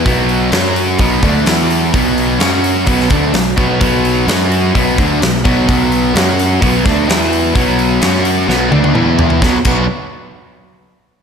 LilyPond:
<<
  \new Staff \with { instrumentName = "Distorted electric guitar" } { \clef bass \time 4/4 \key b \minor \tempo 4 = 128 <b, fis b>4 <fis cis' fis'>4 <b, fis b>8 <d a d'>8 <e b e'>4 | <b, fis b>4 <fis cis' fis'>4 <b, fis b>8 <d a d'>8 <b, fis>8 <b, fis b>8 | <b, fis b>4 <fis cis' fis'>4 <b, fis b>8 <d a d'>8 <b, fis>8 <b, fis b>8 | <b, fis b>4 <fis cis' fis'>4 <b, fis b>8 <d a d'>8 <e b e'>4 |
<b, fis b>4 <fis cis' fis'>4 <b, fis b>8 <d a d'>8 <e b e'>4 | <b, fis b d' fis'>8 <b, fis b d' fis'>8 r2. | }
  \new Staff \with { instrumentName = "Overdriven electric guitar" } { \clef bass \time 4/4 \key b \minor <b, fis b>4 <fis cis' fis'>4 <b, fis b>8 <d a d'>8 <e b e'>4 | <b, fis b>4 <fis cis' fis'>4 <b, fis b>8 <d a d'>8 <b, fis>8 <b, fis b>8 | <b, fis b>4 <fis cis' fis'>4 <b, fis b>8 <d a d'>8 <b, fis>8 <b, fis b>8 | <b, fis b>4 <fis cis' fis'>4 <b, fis b>8 <d a d'>8 <e b e'>4 |
<b, fis b>4 <fis cis' fis'>4 <b, fis b>8 <d a d'>8 <e b e'>4 | <b, fis b>8 <b, fis b>8 r2. | }
  \new Staff \with { instrumentName = "Overdriven electric guitar" } { \clef bass \time 4/4 \key b \minor <b, fis b>4 <fis cis' fis'>4 <b, fis b>8 <d a d'>8 <e b e'>4 | <b, fis b>4 <fis cis' fis'>4 <b, fis b>8 <d a d'>8 <b, fis>8 <b, fis b>8 | <b, fis b>4 <fis cis' fis'>4 <b, fis b>8 <d a d'>8 <b, fis>8 <b, fis b>8 | <b, fis b>4 <fis cis' fis'>4 <b, fis b>8 <d a d'>8 <e b e'>4 |
<b, fis b>4 <fis cis' fis'>4 <b, fis b>8 <d a d'>8 <e b e'>4 | <b, fis b>8 <b, fis b>8 r2. | }
  \new Staff \with { instrumentName = "Picked electric bass" } { \clef bass \time 4/4 \key b \minor b,,4 fis,4 b,,8 d,8 e,4 | b,,4 fis,4 b,,8 d,8 b,,8 b,,8 | b,,4 fis,4 b,,8 d,8 b,,8 b,,8 | b,,4 fis,4 b,,8 d,8 e,4 |
b,,4 fis,4 b,,8 d,8 e,4 | b,,8 b,,8 r2. | }
  \new DrumStaff \with { instrumentName = "Drums" } \drummode { \time 4/4 <hho bd>8 hho8 <hho sn>8 hho8 <hho bd>8 <hho bd>8 <hho sn>8 hho8 | <hho bd>8 hho8 <hho sn>8 hho8 <hho bd>16 sn16 <hho bd>8 <hho sn>8 <hho bd>8 | <hho bd>8 hho8 <hho sn>8 hho8 <hho bd>8 <hho bd>8 <hho sn>8 <hho bd>8 | <hho bd>8 hho8 <hho sn>8 hho8 <hho bd>8 <hho bd sn>8 <hho sn>8 hho8 |
<hho bd>8 hho8 <hho sn>8 hho8 sn8 tommh16 tommh16 toml8 tomfh16 tomfh16 | <bd sn>8 <cymc bd>8 r4 r4 r4 | }
>>